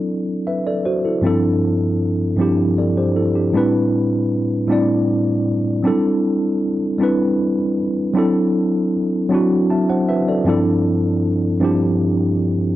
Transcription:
tine electric piano
Already playing: F#3 C4 D4 E4 A4
0.47 B4 E5
0.67 A4 D5
0.85 F#4 C5
1.05 E4 A4
1.22 G2 F3 C4 D4 E4
1.26 A4
2.37 G2 F3 C4 D4 E4
2.41 G4
2.78 A4 D5
2.97 G4 C5
3.16 E4 A4
3.35 D4 G4
3.53 A2 G3 C4 D4 E4
3.57 B4
4.68 A2 G3 C4 D4 E4
4.72 D5
5.83 F#3 C4 D4 E4
5.87 G3 A4
6.99 G3 C4 D4 E4
7.03 B4
8.14 F#3 C4 D4 E4
8.18 A4
9.29 F#3 C4 D4 E4
9.34 F#4
9.70 E5 A5
9.89 C5 F#5
10.09 B4 E5
10.28 A4 D5
10.45 G2 F3 C4 D4 E4
10.49 A4
11.60 G2 F3 C4 D4 E4
11.64 G4

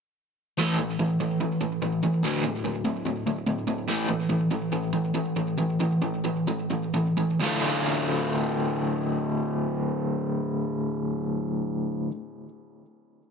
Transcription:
overdriven electric guitar
0.58 A2 E3 A3
0.78 A2 E3
0.99 A2 E3
1.20 A2 E3
1.41 A2 E3
1.61 A2 E3
1.82 A2 E3
2.03 A2 E3
2.23 D2 A2 D3
2.44 D2 A2
2.64 D2 A2
2.85 D2 A2
3.05 D2 A2
3.26 D2 A2
3.47 D2 A2
3.68 D2 A2
3.88 A2 E3 A3
4.08 A2 E3
4.29 A2 E3
4.51 A2 E3
4.72 A2 E3
4.93 A2 E3
5.14 A2 E3
5.36 A2 E3
5.58 A2 E3
5.80 A2 E3
6.02 A2 E3
6.24 A2 E3
6.47 A2 E3
6.70 A2 E3
6.94 A2 E3
7.17 A2 E3
7.40 D2 A2 D3 A3 F4

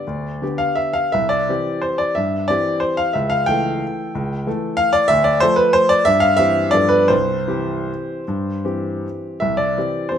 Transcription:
grand piano
Already playing: D5
0.07 D2
0.42 D3 B3 G4
0.58 F5
0.75 E5
0.93 F5
1.12 C2 E5
1.29 D5
1.49 E3 C4 G4
1.82 C5
1.98 D5
2.15 G2 E5
2.48 E3 C4 G4 D5
2.80 C5
2.97 F5
3.13 C#2 E5
3.30 F5
3.46 E3 A3 A4 G5
4.15 C#2
4.46 E3 A3 A4
4.77 F5
4.93 D5
5.08 D2 E5
5.24 D5
5.40 F3 A3 A4 C5
5.56 B4
5.73 C5
5.89 D5
6.05 G2 E5
6.20 F5
6.37 E3 C4 G4 E5
6.71 G2 F3 B3 A4 D5
6.89 B4
7.08 C2 C5
7.48 E3 C4 G4
8.28 G2
8.65 E3 C4 G4
9.40 C2 E5
9.57 D5
9.77 E3 C4 G4
10.09 E3 C4 G4 C5

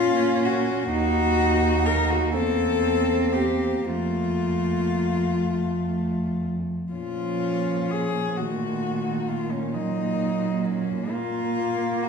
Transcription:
cello
Already playing: A#2 A#3 C#4 F4
0.45 F#4
0.92 D#2 D#4 F#4
1.86 A#4
2.10 F#4
2.33 E2 C4 A4
3.33 G4
3.84 F2 A3 F4
5.40 A3
6.92 A#2 F3 C#4 F4
7.91 G#4
8.37 D#3 A3 F#4
9.28 F4
9.51 C#4
9.74 F#3 A#3 D#4
10.66 C#4
11.11 A#3 F4
12.02 F#4

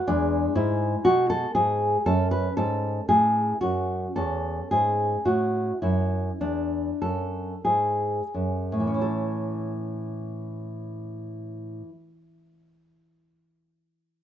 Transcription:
nylon-string guitar
0.07 E2 G#3 D4
0.55 G#2 E4
1.05 B2 F#4
1.30 A4
1.55 G#2 G#4
2.06 F#2 C#4 A4
2.31 B4
2.57 G#2 A4
3.09 A2 G#4
3.61 F#2 F#4
4.16 E2 C#4 A4
4.71 G#2 G#4
5.25 A2 F#4
5.82 F#2 E4
6.41 E2 D4
7.02 F#2 A4
7.65 G#2 G#4
8.34 F#2
8.72 A2
8.80 E3
8.87 C#4
8.94 E4
9.01 A4

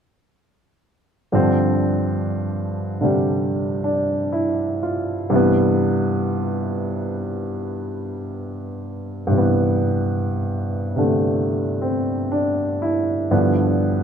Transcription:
grand piano
1.32 G2 D3 F3 C4
3.01 C3 D3 G3
3.84 D4
4.32 E4
4.83 F4
5.30 G2 C3 E3
5.36 B3
9.27 G2 C3
9.35 E3 B3
10.96 C3 D3 A3
11.82 C4
12.32 D4
12.82 E4
13.31 G2 D3 F3 B3

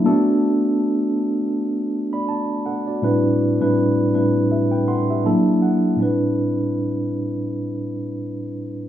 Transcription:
tine electric piano
0.04 A3 B3 D4 F#4 A4
2.13 D5 B5
2.29 A5
2.66 A4 F#5
2.87 F#4 D5
3.02 A2 G3 C4 D4 E4 B4
3.60 A2 G3 C4 D4 E4 B4
4.14 A2 G3 C4 D4 E4 B4
4.51 G4 E5
4.72 B4 G5
4.88 A4 F#5 C6
5.10 G4 E5
5.25 F#3 A#3 D4 E4 A4 A5
5.62 F#5
5.96 A2 G3 C4
6.00 D4 E4 B4

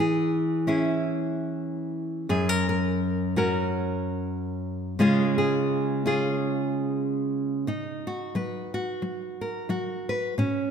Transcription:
nylon-string guitar
Already playing: E3 C#4
0.00 G#4
0.67 C#4 E4 G#4
2.29 F#2 G#4
2.49 A#4
2.69 A#4
3.36 C#4 F#4 A#4
4.99 C#3 G#3 C#4 F4 G#4
5.38 G#4
6.06 C#4 F4 G#4
7.67 B2 D#4
8.07 F#4
8.35 F#3 B4
8.74 F#4
9.02 F#3
9.41 A#4
9.69 F#3 F#4
10.09 B4
10.38 A#2 C#4

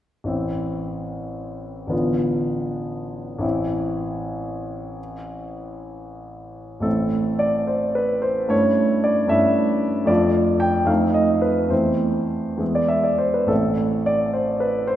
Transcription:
grand piano
0.24 A1 E3 C4 E4
1.87 A1 D3 B3 F4
3.39 A1 E3 C4 E4
6.80 A1 A3 C4 E4 A4
7.39 D5
7.67 C5
7.95 B4
8.22 C5
8.48 G2 A3 C#4 E4 C#5
9.04 D5
9.27 G2 A3 C#4 E4 E5
10.05 F2 A3 D4 F4 D5
10.60 G5
10.85 F2 A3 C4 D#4 F5
11.14 D#5
11.42 B4
11.69 E2 A3 C4 E4 C5
12.57 E2 G#3 B3 E4
12.75 D5
12.88 E5
13.04 D5
13.18 C5
13.34 B4
13.46 A1 A3 C4 E4 A4
14.06 D5
14.33 C5
14.60 B4
14.87 C5

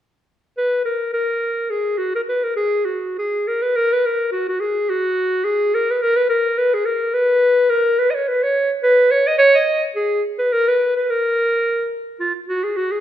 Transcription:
clarinet
0.58 B4
0.85 A#4
1.13 A#4
1.70 G#4
1.98 F#4
2.15 A#4
2.29 B4
2.43 A#4
2.56 G#4
2.85 F#4
3.18 G#4
3.48 A#4
3.62 B4
3.76 A#4
3.93 B4
4.06 A#4
4.32 F#4
4.48 F#4
4.60 G#4
4.89 F#4
5.45 G#4
5.75 A#4
5.91 B4
6.02 A#4
6.16 B4
6.29 A#4
6.58 B4
6.74 G#4
6.86 A#4
7.14 B4
7.70 A#4
7.99 B4
8.10 D#5
8.14 C#5
8.28 B4
8.43 C#5
8.83 B4
9.11 C#5
9.27 D#5
9.37 C#5 D#5
9.54 D#5
9.96 G#4
10.39 B4
10.52 A#4
10.68 B4
10.96 B4
11.10 A#4
12.20 F4
12.48 F#4
12.64 G#4
12.77 F#4
12.92 G#4

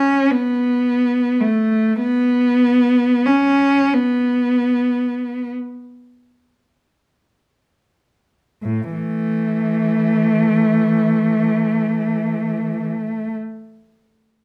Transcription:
cello
Already playing: C#4
0.30 B3
1.40 A3
2.00 B3
3.26 C#4
3.94 B3
8.63 A2
8.93 E3 A3

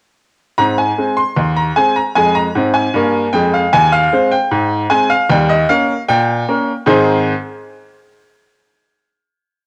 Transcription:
upright piano
0.58 G#2 C4 A#5
0.78 G#5
0.98 G#3 C4 C5
1.17 C6
1.36 D#2
1.56 A#5
1.76 G#3 C4 C5 G#5
1.96 A#5
2.15 F2 G#3 G#5
2.35 A#5
2.55 G#2 C4
2.74 G#5
2.94 G2 A#3
3.33 F2 G#3 G5
3.54 F5
3.73 D#2 G#5
3.92 F5
4.13 G#3 C4 C5
4.31 G5
4.51 G#2
4.90 G#3 C4 C5 G#5
5.10 F5
5.29 D#2 G3 G5
5.49 D#5
5.69 A#3 C#4 A#4 F5
6.09 A#2 G5
6.49 A#3 C#4 A#4
6.86 G#2 D#3 C4 D#4 G#4 C5 C6

